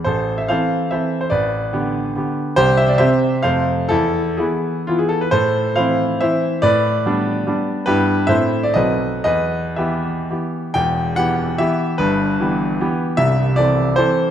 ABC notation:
X:1
M:3/4
L:1/16
Q:1/4=141
K:Am
V:1 name="Grand piano"
[Ac]3 e [cf]4 [ce]3 c | [Bd]8- [Bd]2 z2 | [Gc]2 e d [ce]4 [cf]4 | [EA]4 [E^G]4 F G A B |
[Ac]4 [cf]4 [ce]4 | [Bd]8- [Bd]2 z2 | [K:Em] [GB]4 [ce]3 d [B^d]4 | [B^d]4 [Be]4 z4 |
g4 f4 e4 | B8- B2 z2 | e4 d4 c4 |]
V:2 name="Grand piano"
A,,,4 [E,CA]4 [E,CA]4 | A,,,4 [D,B,G]4 [D,B,G]4 | C,,4 [C,CG]4 [F,,C,A,A]4 | E,,4 [E,B,]4 [E,B,E]4 |
A,,4 [E,CE]4 [E,CE]4 | A,,4 [G,B,D]4 [G,B,D]4 | [K:Em] [G,,B,E]4 [A,,A,CE]4 [B,,,F,CA]4 | E,,4 [E,B,G]4 [E,B,G]4 |
[E,,,E,,]4 [E,B,G]4 [E,B,G]4 | [G,,,G,,]4 [E,B,G]4 [E,B,G]4 | [C,,,C,,]4 [E,CA]4 [E,CA]4 |]